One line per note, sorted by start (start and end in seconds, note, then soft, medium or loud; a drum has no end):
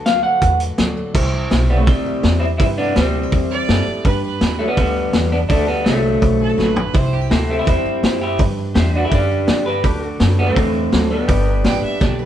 0.00 0.23 D2 medium
0.00 1.12 D3 medium
0.00 0.59 F#4 medium
0.00 1.12 F#4 medium
0.00 1.13 A4 medium
0.00 1.13 D5 medium
0.06 0.77 F#3 medium
0.06 0.22 F#4 medium
0.06 0.22 A4 medium
0.06 0.23 B4 medium
0.06 0.23 F5 loud
0.06 snare loud
0.06 closed hi-hat medium
0.23 1.13 D4 medium
0.23 0.40 F#4 medium
0.23 0.41 A4 medium
0.23 0.41 C5 medium
0.23 0.59 F#5 loud
0.42 0.73 E2 medium
0.42 1.13 A2 medium
0.42 0.74 F#4 medium
0.42 0.75 A4 medium
0.42 0.75 B4 medium
0.42 kick loud
0.42 closed hi-hat medium
0.60 1.13 F#4 medium
0.60 closed hi-hat medium
0.78 1.09 D2 medium
0.78 1.12 F#3 medium
0.78 1.10 F#4 medium
0.78 1.11 A4 medium
0.78 1.11 D5 loud
0.78 snare loud
0.78 closed hi-hat medium
0.97 1.13 A4 medium
1.14 1.50 C2 medium
1.14 1.87 C3 medium
1.14 1.46 E4 loud
1.14 1.47 G4 loud
1.14 1.50 G4 medium
1.14 1.47 C5 loud
1.14 kick loud
1.14 crash loud
1.33 1.69 E4 medium
1.50 1.87 B1 loud
1.50 2.23 G3 medium
1.50 1.83 E4 medium
1.50 2.06 G4 medium
1.50 1.83 G4 medium
1.50 1.83 C5 loud
1.50 snare loud
1.50 open hi-hat medium
1.69 1.78 G3 medium
1.69 1.79 B3 medium
1.69 2.58 E4 medium
1.78 1.86 A3 medium
1.78 1.86 C4 medium
1.86 2.23 D2 medium
1.86 2.59 G2 medium
1.86 2.38 G3 medium
1.86 2.38 C4 medium
1.86 2.42 C4 medium
1.86 2.19 E4 medium
1.86 2.20 G4 medium
1.86 2.20 C5 medium
1.86 kick loud
1.86 open hi-hat medium
2.06 2.98 G4 medium
2.22 2.59 E2 medium
2.22 2.97 G3 medium
2.22 2.55 E4 medium
2.22 2.55 G4 medium
2.22 2.56 C5 medium
2.22 snare loud
2.22 open hi-hat medium
2.40 2.45 C4 medium
2.40 2.58 C4 medium
2.40 2.45 E4 medium
2.58 2.95 G2 medium
2.58 3.32 C3 medium
2.58 2.64 C4 medium
2.58 3.31 C4 medium
2.58 2.63 E4 loud
2.58 2.92 E4 loud
2.58 2.92 G4 medium
2.58 2.92 B4 loud
2.58 kick loud
2.58 open hi-hat medium
2.78 2.95 B3 medium
2.78 2.95 D4 loud
2.78 3.15 E4 medium
2.96 3.31 D2 loud
2.96 3.83 G3 medium
2.96 4.03 G3 medium
2.96 3.83 C4 medium
2.96 3.28 E4 medium
2.96 3.29 G4 medium
2.96 3.49 G4 medium
2.96 3.28 C5 medium
2.96 snare loud
2.96 open hi-hat medium
3.15 3.23 D4 medium
3.23 4.05 E4 medium
3.31 3.68 E2 medium
3.31 3.68 G2 medium
3.31 4.03 C4 medium
3.31 3.64 E4 medium
3.31 3.64 G4 medium
3.31 3.65 C5 medium
3.31 kick loud
3.31 open hi-hat soft
3.51 4.05 G4 medium
3.51 4.03 D5 loud
3.68 3.86 F#2 medium
3.68 3.86 B2 medium
3.68 4.01 E4 medium
3.68 4.01 G4 medium
3.68 4.01 A4 loud
3.68 snare loud
3.68 open hi-hat soft
3.87 4.05 A2 medium
3.87 muted upright bass stroke soft
4.05 5.50 G2 medium
4.05 4.40 G2 medium
4.05 4.37 D4 loud
4.05 4.37 G4 loud
4.05 4.23 B4 medium
4.05 4.41 B4 medium
4.05 4.38 B4 loud
4.05 kick loud
4.05 open hi-hat soft
4.23 4.61 D4 medium
4.23 4.50 B4 medium
4.41 4.76 D#2 medium
4.41 5.12 G3 medium
4.41 4.74 D4 medium
4.41 4.74 G4 medium
4.41 4.95 B4 medium
4.41 4.74 B4 loud
4.41 snare loud
4.41 open hi-hat medium
4.59 4.68 F#3 medium
4.59 4.68 A3 medium
4.59 5.68 D4 medium
4.68 4.77 G3 medium
4.68 4.76 B3 loud
4.77 5.13 D2 medium
4.77 5.47 D3 medium
4.77 5.28 G3 medium
4.77 5.31 B3 loud
4.77 5.31 B3 medium
4.77 5.10 D4 medium
4.77 5.10 G4 medium
4.77 5.10 B4 medium
4.77 kick loud
4.77 open hi-hat medium
4.96 5.48 B4 medium
5.13 5.49 E2 medium
5.13 5.47 G3 medium
5.13 5.46 D4 medium
5.13 5.46 G4 medium
5.13 5.47 D5 medium
5.13 snare loud
5.13 open hi-hat medium
5.32 5.48 B3 medium
5.32 5.37 B3 medium
5.32 5.37 D4 medium
5.49 5.85 D2 medium
5.49 6.92 D3 medium
5.49 5.67 A3 medium
5.49 5.67 D4 loud
5.49 5.82 D4 medium
5.49 5.82 F#4 medium
5.49 5.86 A4 medium
5.49 5.82 A4 loud
5.49 kick loud
5.49 open hi-hat medium
5.68 5.84 G3 medium
5.68 5.86 B3 medium
5.68 6.02 F#4 medium
5.84 6.21 C2 loud
5.84 6.72 F#3 medium
5.84 6.56 F#3 medium
5.84 6.72 A3 medium
5.84 6.18 D4 medium
5.84 6.18 F#4 medium
5.84 6.39 A4 medium
5.84 6.19 C5 medium
5.84 snare loud
5.84 open hi-hat medium
6.04 6.92 F#4 medium
6.22 6.57 B1 medium
6.22 6.92 A2 medium
6.22 6.54 D4 medium
6.22 6.75 D4 medium
6.22 6.54 F#4 medium
6.22 6.54 C5 medium
6.22 kick loud
6.22 open hi-hat soft
6.40 6.49 G4 medium
6.40 6.58 A4 medium
6.49 6.94 A4 medium
6.57 6.93 A1 medium
6.57 6.92 F#3 medium
6.57 6.90 D4 medium
6.57 6.90 F#4 medium
6.57 6.90 A4 loud
6.57 6.97 B4 medium
6.57 snare medium
6.76 6.93 D4 medium
6.76 floor tom medium
6.94 7.30 C2 medium
6.94 7.67 C3 medium
6.94 7.26 E4 loud
6.94 7.26 G4 loud
6.94 7.31 G4 medium
6.94 7.27 C5 loud
6.94 7.15 C5 loud
6.94 kick loud
6.94 open hi-hat medium
7.13 7.21 D4 medium
7.13 7.31 G4 medium
7.21 7.47 E4 medium
7.30 7.66 D2 medium
7.30 7.63 E4 loud
7.30 7.51 F#4 medium
7.30 8.38 G4 medium
7.30 7.63 G4 medium
7.30 7.63 A4 loud
7.30 8.39 C5 medium
7.30 8.39 E5 medium
7.30 snare loud
7.30 open hi-hat medium
7.48 7.58 A3 medium
7.48 7.58 C4 medium
7.48 8.37 E4 medium
7.48 8.39 G4 medium
7.59 7.67 C4 medium
7.59 7.67 E4 medium
7.65 7.84 E2 medium
7.65 8.02 G2 medium
7.65 7.85 C4 medium
7.65 8.18 C4 medium
7.65 7.99 E4 medium
7.65 8.21 E4 medium
7.65 7.99 G4 medium
7.65 7.99 C5 medium
7.65 kick loud
7.65 open hi-hat medium
7.85 8.37 C4 medium
7.85 muted upright bass stroke soft
8.03 8.38 F#2 medium
8.03 8.21 B2 medium
8.03 8.35 E4 medium
8.03 8.36 G4 medium
8.03 8.36 C5 medium
8.03 snare loud
8.03 open hi-hat medium
8.21 8.38 A2 medium
8.21 8.39 E4 medium
8.21 8.38 G4 medium
8.38 9.84 G2 medium
8.38 8.75 G2 medium
8.38 8.72 D4 loud
8.38 8.72 G4 medium
8.38 8.75 B4 medium
8.38 8.72 B4 loud
8.38 kick loud
8.38 open hi-hat medium
8.59 8.94 D4 medium
8.75 9.11 E2 medium
8.75 9.08 D4 loud
8.75 9.83 G4 medium
8.75 9.08 G4 medium
8.75 9.82 B4 medium
8.75 8.97 C5 medium
8.75 9.08 D5 loud
8.75 9.03 E5 medium
8.75 snare loud
8.75 open hi-hat medium
8.94 9.31 D4 medium
8.94 9.03 D4 medium
8.94 9.05 F#4 medium
8.94 9.84 B4 medium
9.03 9.12 E4 medium
9.03 9.13 G4 medium
9.03 9.84 D5 medium
9.11 9.47 F#2 medium
9.11 9.82 D3 medium
9.11 9.66 B3 medium
9.11 9.44 D4 medium
9.11 9.63 D4 medium
9.11 9.44 G4 medium
9.11 9.64 G4 medium
9.11 9.44 B4 medium
9.11 kick loud
9.11 open hi-hat medium
9.31 10.03 D4 medium
9.46 9.83 G2 medium
9.46 9.83 G3 medium
9.46 9.79 D4 medium
9.46 9.80 G4 medium
9.46 9.80 D5 medium
9.46 snare loud
9.46 open hi-hat medium
9.66 9.83 B3 medium
9.66 9.84 G4 medium
9.66 9.83 B4 medium
9.83 10.19 D2 medium
9.83 11.27 D3 medium
9.83 10.16 D4 medium
9.83 10.16 F#4 medium
9.83 10.04 G4 medium
9.83 10.16 A4 loud
9.83 10.20 A4 medium
9.83 10.10 B4 medium
9.83 11.29 D5 medium
9.83 kick loud
9.83 open hi-hat soft
10.03 10.38 F#4 medium
10.03 11.28 F#4 medium
10.10 11.28 A4 medium
10.20 10.56 F#2 medium
10.20 10.91 F#3 medium
10.20 10.53 D4 loud
10.20 10.53 F#4 medium
10.20 10.73 A4 medium
10.20 10.53 B4 loud
10.20 snare loud
10.20 open hi-hat soft
10.39 10.46 G3 medium
10.39 10.48 B3 loud
10.39 11.27 F#4 medium
10.47 11.07 A3 loud
10.47 11.11 C4 loud
10.56 10.92 E2 medium
10.56 11.27 A2 medium
10.56 10.89 D4 medium
10.56 11.10 D4 medium
10.56 10.89 F#4 medium
10.56 10.89 B4 medium
10.56 kick loud
10.56 open hi-hat medium
10.75 11.27 A4 medium
10.92 11.28 D2 medium
10.92 11.27 F#3 medium
10.92 11.25 D4 loud
10.92 11.25 F#4 medium
10.92 11.25 A4 loud
10.92 snare loud
10.92 open hi-hat medium
11.11 12.25 G3 medium
11.11 12.25 B3 medium
11.11 11.27 D4 medium
11.28 11.64 G1 medium
11.28 12.25 G2 medium
11.28 11.61 D4 loud
11.28 12.25 G4 medium
11.28 11.61 G4 medium
11.28 11.54 A4 medium
11.28 11.64 B4 medium
11.28 11.62 B4 loud
11.28 12.25 D5 medium
11.28 kick loud
11.28 open hi-hat medium
11.48 11.84 D4 medium
11.54 12.25 B4 medium
11.64 11.82 A1 medium
11.64 12.25 G3 medium
11.64 11.97 D4 loud
11.64 11.97 G4 medium
11.64 12.18 B4 medium
11.64 11.97 D5 loud
11.64 11.83 G5 loud
11.64 snare loud
11.64 open hi-hat medium
11.84 12.25 D4 medium
11.84 12.04 E5 medium
11.84 muted upright bass stroke soft
12.00 12.25 B1 medium
12.00 12.25 D3 medium
12.00 12.25 B3 medium
12.00 12.25 D4 medium
12.00 12.25 G4 medium
12.00 12.25 A4 loud
12.00 12.19 D5 medium
12.00 kick loud
12.00 snare medium
12.19 12.25 B4 medium